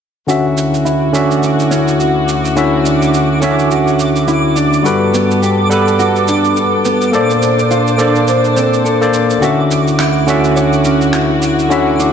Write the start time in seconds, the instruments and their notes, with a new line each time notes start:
0.27 string section D2 E4 F#4, tine electric piano D3 C#4 F#4 E5, clean electric guitar F#4, synth texture D6, cabasa
0.57 cabasa
0.74 cabasa
0.85 clean electric guitar E4, cabasa
1.12 tine electric piano D3 C#4 F#4 E5, clean electric guitar D4, cabasa
1.31 cabasa
1.43 cabasa
1.60 cabasa
1.71 clean electric guitar C#4, cabasa
1.88 cabasa
2.00 clean electric guitar F#4, cabasa
2.29 cabasa
2.45 cabasa
2.55 tine electric piano D3 C#4 F#4 E5, clean electric guitar E4, cabasa
2.86 clean electric guitar D4, cabasa
3.02 cabasa
3.14 cabasa
3.40 tine electric piano D3 C#4 F#4 E5, clean electric guitar C#4, cabasa
3.59 cabasa
3.71 clean electric guitar F#4, cabasa
3.87 cabasa
3.99 cabasa
4.16 cabasa
4.28 clean electric guitar E4, cabasa
4.56 clean electric guitar D4, cabasa
4.73 cabasa
4.83 string section G2 B3 A4, tine electric piano G3 F#4 A4 B4, cabasa
5.14 clean electric guitar B3, cabasa
5.31 cabasa
5.42 clean electric guitar G4, cabasa
5.69 tine electric piano G3 A4 B4 F#5, cabasa
5.88 cabasa
5.99 clean electric guitar F#4, cabasa
6.16 cabasa
6.28 clean electric guitar D4, cabasa
6.44 cabasa
6.56 cabasa
6.85 clean electric guitar B3, cabasa
7.01 cabasa
7.12 string section A#2 D4 A4 C5, tine electric piano A#3 A4 C5 D5, clean electric guitar A4, cabasa
7.30 cabasa
7.42 cabasa
7.59 cabasa
7.71 clean electric guitar F4, cabasa
7.87 cabasa
7.98 tine electric piano A#3 A4 C5 D5, clean electric guitar D4, cabasa
8.15 cabasa
8.28 cabasa
8.44 cabasa
8.56 clean electric guitar C4, cabasa
8.73 cabasa
8.84 clean electric guitar A4, cabasa
9.01 tine electric piano A#3 A4 C5 D5, cabasa
9.14 cabasa
9.30 cabasa
9.40 string section D2 E4 F#4, tine electric piano D3 C#4 F#4 E5, clean electric guitar F#4, cabasa
9.71 cabasa
9.88 cabasa
9.99 clean electric guitar E4, finger snap, cabasa
10.26 tine electric piano D3 C#4 F#4 E5, clean electric guitar D4, cabasa
10.44 cabasa
10.56 clean electric guitar C#5, cabasa
10.73 cabasa
10.85 clean electric guitar C#4, cabasa
11.01 cabasa
11.13 clean electric guitar F#4, finger snap, cabasa
11.42 cabasa
11.59 cabasa
11.69 tine electric piano D3 C#4 F#4 E5, clean electric guitar E4, cabasa
12.00 clean electric guitar D4, cabasa